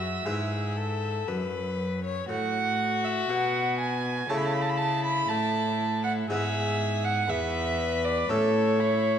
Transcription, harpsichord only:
Already playing: F#2
0.26 G#2 G#3 E4 B4
1.28 F#2
2.29 A2
3.30 B2
4.30 C#3 A3 E4 C#5
5.30 A2
6.30 G#2 B3 E4 B4
7.30 E2
8.29 A2 C#4 E4 A4

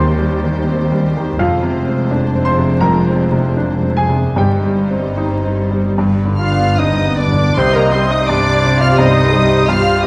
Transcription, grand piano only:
Already playing: D#2 D#3 G3 C4 C5 D5 D#5 C6 D6 D#6
0.19 G3
0.44 D#3
0.69 C4
0.92 G3
1.17 D#3
1.39 F2 F4 F5
1.63 C3
1.87 C4
2.11 D4
2.35 C4
2.45 C5 C6
2.58 C3
2.81 F2 A#4 A#5
3.07 C4
3.32 C3
3.57 D4
3.83 C4
3.97 G#4 G#5
4.09 C3
4.36 G2 G4 G5
4.64 G3
4.91 C4
5.17 D#4
5.44 C4
5.71 G3
5.98 G2
6.25 D3
6.52 B3
6.79 D4
7.05 B3
7.32 D3
7.57 C2
7.93 G3
8.29 G2
8.64 C4
8.98 G2
9.34 G3
9.69 G2

